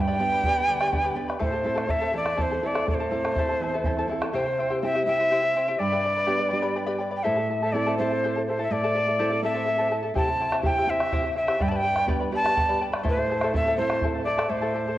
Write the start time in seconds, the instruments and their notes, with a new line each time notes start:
Already playing: nylon-string guitar G2
0.01 quena G5
0.07 charango G4 B4 D5 G5 B5
0.19 nylon-string guitar B3 D4 G4, charango B4 D5 G5 B5
0.32 charango B4 D5 B5
0.43 nylon-string guitar B3 D4 G4, charango G4 B4 D5 G5 B5, bombo low
0.56 charango B4 D5 B5
0.67 nylon-string guitar D3, charango B4 D5 G5 B5
0.80 charango G4 B4 D5 G5 B5, bombo rim
0.91 nylon-string guitar B3 D4 G4, charango B4 D5 G5 B5, bombo low
1.04 charango G4 B4 D5 G5 B5
1.14 nylon-string guitar B3 D4 G4, charango B4 D5 G5 B5
1.28 charango B4 D5 B5, bombo rim
1.39 nylon-string guitar A2, charango E4 A4 C5 E5 A5, quena C5, bombo low
1.52 charango E4 A4 A5
1.63 nylon-string guitar C4 E4 A4, charango E4 A4 E5 A5
1.75 charango E4 A4 C5 E5 A5, bombo rim
1.88 nylon-string guitar C4 E4 A4, charango E4 A4 E5 A5, quena E5, bombo low
2.01 charango E4 A4 C5 E5 A5
2.13 nylon-string guitar E2, charango E4 A4 E5 A5, quena D5
2.25 charango E4 A4 A5, bombo rim
2.37 nylon-string guitar C4 E4 A4, charango E4 A4 C5 E5 A5, bombo low
2.42 quena C5
2.51 charango E4 A4 A5
2.63 nylon-string guitar C4 E4 A4, charango E4 A4 E5 A5
2.67 quena D5
2.74 charango E4 A4 C5 E5 A5, bombo rim
2.86 nylon-string guitar A2, charango E4 A4 E5 A5, quena D5, bombo low
2.94 quena C5
2.99 charango E4 A4 C5 E5 A5, bombo rim
3.10 nylon-string guitar C4 E4 A4, charango E4 A4 E5 A5
3.24 charango E4 A4 A5, bombo rim
3.35 nylon-string guitar C4 E4 A4, charango E4 C5 A5, bombo low
3.39 charango A4 E5
3.49 charango E4 A4 A5, bombo rim
3.60 nylon-string guitar E2, charango E4 A4 E5 A5, bombo rim
3.74 charango E4 A4 C5 E5 A5
3.84 nylon-string guitar C4 E4 A4 E5, charango E4 A4 E5 A5, bombo rim, bombo low
3.97 charango E4 A4 C5 E5 A5, bombo rim
4.07 nylon-string guitar C4 E4 A4, charango E4 E5, bombo rim
4.11 charango A4 A5
4.22 charango E4 A4 A5, bombo rim
4.33 nylon-string guitar C3, charango E4 G4 C5 E5 G5, quena C5
4.46 charango E4 C5 G5
4.59 charango E4 C5 E5 G5
4.70 charango E4 G4 C5 E5 G5
4.82 nylon-string guitar C4 E4 G4, charango E4 C5 E5 G5, quena E5
4.95 charango E4 G4 C5 E5 G5
5.06 nylon-string guitar C4 E4 G4, charango E4 C5 E5 G5, quena E5
5.19 charango E4 C5 G5
5.31 charango E4 G4 C5 E5 G5
5.42 charango E4 C5 G5
5.55 charango E4 C5 E5 G5
5.68 charango E4 G4 C5 E5 G5
5.79 nylon-string guitar G2, charango B4 D5 G5 B5, quena D5
5.92 charango G4 B4 D5 G5 B5
6.04 charango B4 D5 G5 B5
6.17 charango B4 D5 B5
6.27 nylon-string guitar B3 D4 G4, charango G4 B4 D5 G5 B5
6.38 charango B4 D5 B5
6.49 nylon-string guitar B3, charango B4 D5 G5 B5
6.53 nylon-string guitar D4 G4
6.62 charango G4 B4 D5 G5 B5
6.76 charango B4 D5 G5 B5
6.86 charango G4 B4 D5 G5 B5
6.98 charango B4 D5 G5 B5
7.11 charango B4 D5 B5
7.17 quena G5
7.24 nylon-string guitar A2, charango E4 A4 C5 E5 A5, quena E5
7.36 charango E4 A4 A5
7.50 charango E4 A4 E5 A5
7.62 charango E4 A4 C5 E5 A5
7.72 nylon-string guitar C4 E4 A4, charango E4 A4 E5 A5, quena D5
7.86 charango E4 A4 C5 E5 A5
7.98 nylon-string guitar C4 E4 A4, charango E4 A4 E5 A5, quena C5
8.10 charango E4 A4 A5
8.24 charango E4 A4 C5 E5 A5
8.36 charango E4 A4 A5
8.47 charango E4 A4 E5, quena C5
8.51 charango A5
8.59 charango E4 A4 C5 E5 A5
8.64 quena E5
8.71 nylon-string guitar A2, charango E4 A4 E5 A5, quena D5
8.84 charango E4 A4 C5 E5 A5
8.96 charango E4 A4 E5 A5
9.07 charango E4 A4 A5
9.19 nylon-string guitar C4 E4 A4, charango E4 A4 C5 E5 A5
9.31 charango E4 A4 A5
9.42 nylon-string guitar C4 E4 A4, charango E4 A4 E5 A5, quena E5
9.55 charango E4 A4 C5 E5 A5
9.66 charango E4 A4 E5 A5
9.78 charango E4 A4 C5 E5 A5
9.90 charango E4 A4 E5 A5
10.03 charango E4 A4 A5
10.14 nylon-string guitar C3, charango E4 G4 C5 E5 G5, quena A5, bombo low
10.27 charango E4 C5 G5
10.40 charango E4 C5 E5 G5
10.52 charango E4 G4 C5 E5 G5, bombo rim
10.62 nylon-string guitar C4 E4 G4, charango E4 C5 E5 G5, quena G5, bombo low
10.77 charango E4 G4 C5 E5 G5
10.87 nylon-string guitar C4 E4 G4, charango E4 C5 E5 G5, quena E5
11.00 charango E4 C5 G5, bombo rim
11.12 charango E4 G4 C5 E5 G5, bombo low
11.24 charango E4 C5 G5
11.36 charango E4 C5 E5 G5, quena E5
11.47 charango E4 G4 C5 E5 G5, bombo rim
11.59 nylon-string guitar G2, charango B4 D5 G5 B5, quena G5, bombo low
11.69 charango G4 B4 D5 G5 B5, quena A5
11.76 quena G5
11.83 charango B4 D5 G5 B5
11.96 charango B4 D5 B5, bombo rim
12.07 nylon-string guitar B3 D4 G4, charango G4 B4 D5 G5 B5, bombo low
12.20 charango B4 D5 B5
12.31 nylon-string guitar B3 D4 G4, charango B4 D5 G5 B5
12.36 quena A5
12.44 charango G4 B4 D5 G5 B5, bombo rim
12.56 charango B4 D5 G5 B5, bombo low
12.69 charango G4 B4 D5 G5 B5
12.81 charango B4 D5 G5 B5
12.92 charango B4 D5 B5, bombo rim
13.03 nylon-string guitar A2, charango E4 A4 C5 E5 A5, bombo low
13.09 quena C5
13.17 charango E4 A4 A5
13.29 charango E4 A4 E5 A5
13.41 charango E4 A4 C5 E5 A5, bombo rim
13.53 nylon-string guitar C4 E4 A4, charango E4 A4 E5 A5, quena E5, bombo low
13.67 charango E4 A4 C5 E5 A5
13.77 nylon-string guitar C4 E4 A4, charango A4 E5, quena C5
13.81 charango E4 A5
13.90 charango E4 A4 A5, bombo rim
14.02 charango E4 A4 C5 E5 A5, bombo low
14.15 charango E4 A4 A5
14.25 charango E4 A4 E5 A5, quena D5
14.38 charango E4 A4 C5 E5 A5, bombo rim
14.49 nylon-string guitar A2, charango E4 A4 E5 A5, quena C5
14.62 charango E4 A4 C5 E5 A5
14.75 charango E4 A4 E5 A5
14.88 charango E4 A4 A5